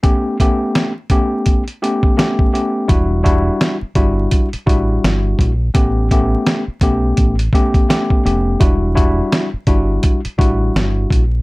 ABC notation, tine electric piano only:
X:1
M:4/4
L:1/8
Q:"Swing 16ths" 1/4=84
K:Edor
V:1 name="Tine electric piano"
[A,B,CG] [A,B,CG] z [A,B,CG] z [A,B,CG] [A,B,CG] [A,B,CG] | [G,DEF] [G,DEF] z [G,DEF] z [G,DEF]2 z | [A,B,CG] [A,B,CG] z [A,B,CG] z [A,B,CG] [A,B,CG] [A,B,CG] | [G,DEF] [G,DEF] z [G,DEF] z [G,DEF]2 z |]